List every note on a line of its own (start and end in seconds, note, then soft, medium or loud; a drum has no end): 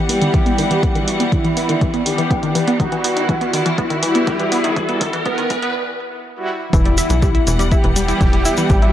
0.00 5.71 E3 medium
0.00 5.71 G3 medium
0.00 5.71 B3 medium
0.00 1.22 G4 loud
0.00 2.76 F#5 medium
0.00 riser medium
0.09 0.92 G3 medium
0.09 0.16 B3 loud
0.09 0.92 E4 medium
0.09 0.92 G4 medium
0.09 open hi-hat loud
0.22 0.28 D#3 loud
0.22 closed hi-hat medium
0.34 0.38 E3 loud
0.34 kick loud
0.34 closed hi-hat medium
0.46 0.52 B3 loud
0.46 closed hi-hat medium
0.58 0.65 D#3 loud
0.58 open hi-hat loud
0.71 0.75 E3 loud
0.71 closed hi-hat medium
0.83 0.89 B3 loud
0.83 kick loud
0.83 closed hi-hat medium
0.95 1.02 D#3 loud
0.95 1.09 G3 medium
0.95 1.09 E4 medium
0.95 1.09 F#4 loud
0.95 closed hi-hat medium
1.08 1.11 E3 loud
1.08 open hi-hat loud
1.20 1.26 B3 loud
1.20 closed hi-hat medium
1.32 1.39 D#3 medium
1.32 1.96 E4 loud
1.32 kick loud
1.32 closed hi-hat medium
1.45 1.48 E3 loud
1.45 closed hi-hat medium
1.57 1.63 B3 loud
1.57 open hi-hat loud
1.69 1.75 D#3 loud
1.69 closed hi-hat medium
1.81 1.85 E3 loud
1.81 kick loud
1.81 closed hi-hat medium
1.94 2.00 B3 loud
1.94 closed hi-hat medium
2.06 2.12 D#3 medium
2.06 2.70 G4 medium
2.06 open hi-hat loud
2.18 2.22 E3 loud
2.18 closed hi-hat medium
2.31 2.37 B3 loud
2.31 kick loud
2.31 closed hi-hat medium
2.43 2.49 D#3 loud
2.43 closed hi-hat medium
2.55 2.59 E3 loud
2.55 open hi-hat loud
2.67 2.74 B3 loud
2.67 closed hi-hat medium
2.80 2.86 D#3 loud
2.80 5.72 E4 medium
2.80 3.68 F#4 loud
2.80 kick loud
2.80 closed hi-hat medium
2.92 2.96 E3 loud
2.92 closed hi-hat medium
3.04 3.11 B3 loud
3.04 open hi-hat loud
3.17 3.23 D#3 loud
3.17 closed hi-hat medium
3.29 3.33 E3 loud
3.29 kick loud
3.29 closed hi-hat medium
3.41 3.47 B3 loud
3.41 closed hi-hat medium
3.53 3.60 D#3 loud
3.53 open hi-hat loud
3.66 3.70 E3 loud
3.66 closed hi-hat medium
3.78 3.84 B3 loud
3.78 5.16 E4 loud
3.78 kick loud
3.78 closed hi-hat medium
3.90 3.97 D#3 loud
3.90 closed hi-hat medium
4.03 4.07 E3 loud
4.03 4.86 G3 medium
4.03 4.86 E4 medium
4.03 4.86 F#4 medium
4.03 open hi-hat loud
4.15 4.21 B3 loud
4.15 closed hi-hat medium
4.27 4.34 D#3 loud
4.27 kick loud
4.27 closed hi-hat medium
4.40 4.43 E3 loud
4.40 closed hi-hat medium
4.52 4.58 B3 loud
4.52 open hi-hat loud
4.64 4.70 D#3 loud
4.64 closed hi-hat medium
4.76 4.80 E3 loud
4.76 kick loud
4.76 closed hi-hat medium
4.89 5.02 G3 medium
4.89 4.95 B3 loud
4.89 5.02 E4 medium
4.89 5.02 F#4 loud
4.89 closed hi-hat medium
5.01 5.07 D#3 loud
5.01 kick loud
5.01 open hi-hat loud
5.13 5.17 E3 loud
5.13 closed hi-hat medium
5.26 5.32 B3 loud
5.26 5.75 B3 loud
5.26 kick loud
5.26 closed hi-hat medium
5.38 5.44 D#3 loud
5.38 closed hi-hat medium
5.50 5.54 E3 loud
5.50 kick loud
5.50 open hi-hat loud
5.62 5.69 B3 loud
5.62 closed hi-hat medium
6.36 6.50 G3 medium
6.36 6.50 E4 medium
6.36 6.50 F#4 loud
6.73 7.03 E1 loud
6.73 6.79 E3 medium
6.73 8.93 E3 medium
6.73 8.93 G3 medium
6.73 8.93 B3 medium
6.73 6.80 E4 medium
6.73 7.62 E4 loud
6.73 8.93 F#5 medium
6.73 kick loud
6.73 closed hi-hat medium
6.73 shaker soft
6.85 6.92 G3 medium
6.85 6.92 G4 medium
6.85 closed hi-hat medium
6.98 7.04 E4 medium
6.98 7.04 E5 medium
6.98 open hi-hat loud
6.98 shaker loud
7.10 7.39 B1 loud
7.10 7.16 E3 medium
7.10 7.16 E4 medium
7.10 closed hi-hat medium
7.10 shaker medium
7.22 7.29 G3 medium
7.22 7.29 G4 medium
7.22 kick loud
7.22 closed hi-hat medium
7.22 shaker soft
7.35 7.41 E4 medium
7.35 7.41 E5 medium
7.35 closed hi-hat medium
7.47 7.76 E1 loud
7.47 7.53 E3 medium
7.47 7.53 E4 medium
7.47 open hi-hat loud
7.47 shaker medium
7.59 7.66 G3 medium
7.59 7.66 G4 medium
7.59 closed hi-hat medium
7.59 shaker medium
7.72 7.78 E4 medium
7.72 8.93 G4 loud
7.72 7.78 E5 medium
7.72 kick loud
7.72 closed hi-hat medium
7.72 shaker soft
7.84 8.13 E1 medium
7.84 7.90 E3 medium
7.84 7.90 E4 medium
7.84 closed hi-hat medium
7.96 8.02 G3 medium
7.96 8.79 G3 medium
7.96 8.79 E4 medium
7.96 8.79 G4 medium
7.96 8.02 G4 medium
7.96 open hi-hat loud
7.96 shaker loud
8.08 8.15 E4 medium
8.08 8.15 E5 medium
8.08 closed hi-hat medium
8.08 shaker soft
8.21 8.50 E1 medium
8.21 8.27 E3 medium
8.21 8.27 E4 medium
8.21 kick loud
8.21 closed hi-hat medium
8.21 shaker soft
8.33 8.39 G3 medium
8.33 8.39 G4 medium
8.33 closed hi-hat medium
8.45 8.52 E4 medium
8.45 8.52 E5 medium
8.45 open hi-hat loud
8.45 shaker loud
8.57 8.64 E3 medium
8.57 8.64 E4 medium
8.57 closed hi-hat medium
8.57 shaker medium
8.70 8.93 A1 loud
8.70 8.76 G3 medium
8.70 8.76 G4 medium
8.70 kick loud
8.70 closed hi-hat medium
8.70 shaker soft
8.82 8.93 G3 loud
8.82 8.93 E4 medium
8.82 8.89 E4 medium
8.82 8.93 F#4 loud
8.82 8.89 E5 medium
8.82 closed hi-hat medium